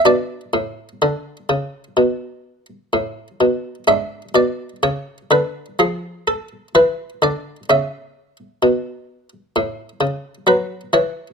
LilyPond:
<<
  \new Staff \with { instrumentName = "Harpsichord" } { \time 4/4 \key a \major \tempo 4 = 63 << { d''1 | e''8 d''8 cis''8 b'8 gis'8 a'8 b'8 d''8 | e''2. b'8 cis''8 | } \\ { d'1 | d'1 | cis'1 | } >> }
  \new Staff \with { instrumentName = "Harpsichord" } { \clef bass \time 4/4 \key a \major b,8 a,8 d8 cis8 b,4 a,8 b,8 | gis,8 b,8 cis8 d8 eis4 e8 d8 | cis4 b,4 a,8 cis8 fis8 e8 | }
>>